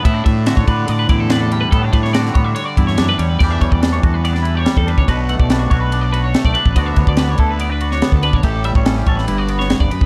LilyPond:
<<
  \new Staff \with { instrumentName = "Clean electric guitar" } { \time 4/4 \key a \mixolydian \tempo 4 = 143 e'8 e''8 e''16 cis''16 b'8 d''16 b'16 d''16 a'16 b'16 a'16 g'16 b'16 | a'16 g'16 b'16 cis''16 d''8 cis''16 e''16 cis''16 d''8 cis''8 b'16 cis''16 b'16 | d''16 e''16 cis''16 d''16 b'16 cis''16 a'16 b'16 d''16 b'8 cis''8 a'16 b'16 cis''16 | b'8 fis''16 d''16 b'16 fis'16 cis''16 b'8 d''16 b'16 cis''8 d''16 b'8 |
d''16 e''16 cis''16 d''16 b'16 cis''16 a'16 b'16 d''16 b'8 cis''8 a'16 b'16 cis''16 | a'8 e''16 cis''16 a'16 g'16 cis''16 b'8 d''16 b'16 cis''8 d''16 b'8 | }
  \new Staff \with { instrumentName = "Clean electric guitar" } { \time 4/4 \key a \mixolydian << { b16 d'8. fis'8 d'4 e'8 d'8 g8 | b16 d'8. fis'8 b16 d'8. e'8 d'8 g8 | <e g d' g'>8 g8 d'8 fis'8 b16 d'16 e'16 g'16 g8 d'8 | fis'8 a8 d'8 fis'8 d'8 fis'8 a8 d'8 |
<d b d' fis'>8 b8 d'8 e'8 b16 d'16 fis'8 b8 d'8 | g'8 g8 cis'8 a'8 e'16 fis'16 b4. | } \\ { a,4 d4. e,4. | a,4 d4. e,4. | e,1 | b,1 |
d,1 | a,2 g,4 g,8 fis,8 | } >> }
  \new Staff \with { instrumentName = "Fingered electric bass" } { \clef bass \time 4/4 \key a \mixolydian a,8 a,8. a,16 a,8 a,8 a,4. | a,8 a,4 a,8 r8 g,8 fis,8 e,8 | e,8 e,16 e,8. e,4.~ e,16 e,8 cis,16 | b,,8. b,,8. b,,4.~ b,,16 b,,16 r16 a,,16 |
d,8 d,16 d,8. d,4.~ d,16 d,8 bes,,16 | a,,8. a,,8. a,,8 g,,4~ g,,16 g,,16 r16 d,16 | }
  \new DrumStaff \with { instrumentName = "Drums" } \drummode { \time 4/4 <bd cymr>8 <bd cymr>8 <cymr sn>16 bd16 <bd cymr>8 cymr8 <bd cymr>8 <cymr sn>8 cymr8 | <bd cymr>8 <bd cymr>16 sn16 <cymr sn>16 sn16 <bd cymr>8 cymr8 <bd cymr>16 sn16 <cymr sn>8 cymr8 | <cymc bd>8 <bd cymr>16 bd16 <cymr sn>8 <bd cymr>8 cymr16 sn16 cymr8 <cymr sn>16 bd16 cymr16 bd16 | <bd cymr>8 cymr16 bd16 <cymr sn>8 <bd cymr>8 cymr8 cymr8 <cymr sn>16 bd16 cymr16 bd16 |
<bd cymr>8 <bd cymr>16 bd16 <cymr sn>8 <bd cymr>8 cymr8 cymr16 sn16 <cymr sn>16 bd16 cymr16 bd16 | <bd cymr>8 cymr16 bd16 <cymr sn>16 sn16 <bd cymr>16 sn16 cymr8 cymr16 sn16 <cymr sn>16 bd16 cymr16 bd16 | }
>>